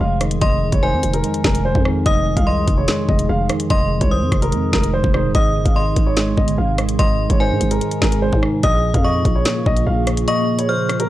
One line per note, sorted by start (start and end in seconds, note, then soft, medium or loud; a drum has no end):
0.00 0.40 F1 loud
0.00 0.41 F2 medium
0.00 8.59 C3 medium
0.00 0.20 D#3 medium
0.00 5.31 F3 medium
0.00 0.62 G#3 medium
0.00 8.59 D#4 medium
0.00 5.31 G#4 loud
0.00 0.16 F5 medium
0.00 0.38 C6 medium
0.21 0.81 D#3 medium
0.21 cross-stick medium
0.21 closed hi-hat medium
0.31 closed hi-hat medium
0.41 0.71 F1 loud
0.41 1.44 F2 medium
0.41 0.71 D#5 loud
0.41 0.80 C6 loud
0.41 kick loud
0.41 closed hi-hat medium
0.72 0.94 F1 loud
0.72 0.80 C#5 medium
0.72 kick loud
0.72 closed hi-hat medium
0.82 1.84 D#3 medium
0.82 1.12 C5 medium
0.82 2.02 G#5 medium
0.93 1.03 F2 loud
1.03 1.23 F1 loud
1.03 closed hi-hat medium
1.14 1.43 A#4 medium
1.14 closed hi-hat medium
1.24 2.27 G#3 medium
1.24 closed hi-hat medium
1.34 closed hi-hat medium
1.44 1.74 F1 loud
1.44 2.05 F2 medium
1.44 1.60 A#4 medium
1.44 kick loud
1.44 snare loud
1.55 closed hi-hat medium
1.65 1.80 C5 medium
1.75 2.05 F2 loud
1.75 kick loud
1.85 2.45 D#3 medium
1.85 cross-stick loud
2.06 2.36 F1 loud
2.06 3.08 F2 medium
2.06 2.35 D#5 loud
2.06 2.45 D#6 loud
2.06 kick loud
2.06 closed hi-hat medium
2.37 2.66 C2 loud
2.37 2.44 F5 medium
2.37 kick medium
2.37 closed hi-hat medium
2.47 3.49 D#3 medium
2.47 2.76 D#5 medium
2.47 3.66 C6 medium
2.68 2.87 F1 loud
2.68 kick loud
2.68 closed hi-hat medium
2.78 3.07 C#5 medium
2.88 3.91 G#3 medium
2.88 snare loud
2.88 closed hi-hat medium
3.09 3.28 F1 loud
3.09 3.69 F2 medium
3.09 3.24 D#5 medium
3.09 kick medium
3.19 closed hi-hat medium
3.29 3.49 F1 loud
3.29 3.45 F5 medium
3.49 4.10 D#3 medium
3.49 cross-stick loud
3.49 closed hi-hat medium
3.60 closed hi-hat medium
3.70 4.00 F1 loud
3.70 4.72 F2 medium
3.70 3.99 D#5 loud
3.70 4.09 C6 loud
3.70 kick loud
3.70 closed hi-hat medium
4.01 4.23 C2 loud
4.01 4.09 C#5 medium
4.01 kick medium
4.01 closed hi-hat medium
4.11 5.13 D#3 medium
4.11 4.40 C5 medium
4.11 5.31 D#6 medium
4.22 4.31 F2 loud
4.32 4.54 F1 loud
4.32 kick loud
4.32 cross-stick loud
4.32 closed hi-hat medium
4.42 4.71 A#4 medium
4.42 closed hi-hat medium
4.52 4.72 F2 loud
4.52 5.35 G#3 medium
4.52 closed hi-hat medium
4.73 5.03 F1 loud
4.73 5.35 F2 medium
4.73 4.88 A#4 medium
4.73 kick medium
4.73 snare loud
4.84 closed hi-hat medium
4.93 5.09 C5 medium
5.04 5.26 F1 loud
5.04 kick loud
5.14 5.35 D#3 medium
5.14 5.30 C5 medium
5.14 cross-stick loud
5.24 5.34 D#1 loud
5.34 5.57 G#1 loud
5.34 6.36 G#2 medium
5.34 8.60 G#3 medium
5.34 8.60 G#4 loud
5.34 5.64 D#5 loud
5.34 5.73 D#6 loud
5.34 kick loud
5.34 closed hi-hat medium
5.55 5.65 G1 loud
5.65 5.95 G#1 loud
5.65 5.73 F5 medium
5.65 kick loud
5.65 closed hi-hat medium
5.76 6.77 D#3 medium
5.76 6.05 D#5 medium
5.76 6.95 C6 medium
5.96 6.36 G#1 loud
5.96 kick loud
5.96 closed hi-hat medium
6.07 6.36 C#5 medium
6.16 7.19 G#3 medium
6.16 snare loud
6.16 closed hi-hat medium
6.37 6.57 G1 loud
6.37 6.98 G#2 medium
6.37 6.53 D#5 medium
6.37 kick loud
6.48 closed hi-hat medium
6.58 6.97 G#1 loud
6.58 6.74 F5 medium
6.78 7.39 D#3 medium
6.78 cross-stick loud
6.78 closed hi-hat medium
6.89 closed hi-hat medium
6.99 7.29 G#1 loud
6.99 8.01 G#2 medium
6.99 7.28 D#5 loud
6.99 7.38 C6 loud
6.99 kick loud
6.99 closed hi-hat medium
7.30 7.52 G#1 loud
7.30 7.38 C#5 medium
7.30 kick medium
7.30 closed hi-hat medium
7.40 8.41 D#3 medium
7.40 7.69 C5 medium
7.40 8.59 G#5 medium
7.51 7.60 G#2 loud
7.61 7.80 G#1 loud
7.61 closed hi-hat medium
7.71 8.00 A#4 medium
7.71 closed hi-hat medium
7.81 8.64 G#3 medium
7.81 closed hi-hat medium
7.91 closed hi-hat medium
8.02 8.31 G#1 loud
8.02 8.63 G#2 medium
8.02 8.17 A#4 medium
8.02 kick medium
8.02 snare loud
8.12 closed hi-hat medium
8.22 8.38 C5 medium
8.33 8.62 G#2 loud
8.33 kick loud
8.43 8.63 D#3 medium
8.43 cross-stick loud
8.63 8.93 A#1 loud
8.63 9.65 A#2 medium
8.63 11.09 C#3 medium
8.63 11.09 A#3 medium
8.63 11.09 F4 medium
8.63 11.09 G#4 medium
8.63 8.92 D#5 loud
8.63 9.02 D#6 loud
8.63 kick loud
8.63 closed hi-hat medium
8.94 9.24 F2 loud
8.94 9.02 F5 medium
8.94 kick medium
8.94 closed hi-hat medium
9.04 10.06 F3 medium
9.04 9.33 D#5 medium
9.04 10.24 C#6 medium
9.25 9.45 A#1 loud
9.25 kick loud
9.25 closed hi-hat medium
9.35 9.64 C#5 medium
9.45 10.48 A#3 medium
9.45 snare loud
9.45 closed hi-hat medium
9.66 9.86 A#1 loud
9.66 10.27 A#2 medium
9.66 9.82 D#5 medium
9.66 kick medium
9.77 closed hi-hat medium
9.87 10.26 A#1 loud
9.87 10.02 F5 medium
10.07 10.67 F3 medium
10.07 cross-stick loud
10.07 closed hi-hat medium
10.17 closed hi-hat medium
10.28 11.09 A#2 medium
10.28 10.57 D#5 loud
10.28 10.66 C#6 loud
10.28 closed hi-hat medium
10.59 10.66 C#5 medium
10.59 closed hi-hat medium
10.69 11.09 F3 medium
10.69 10.98 C5 medium
10.69 11.09 F6 loud
10.89 cross-stick loud
10.89 closed hi-hat medium
11.00 11.09 A#4 medium
11.00 closed hi-hat medium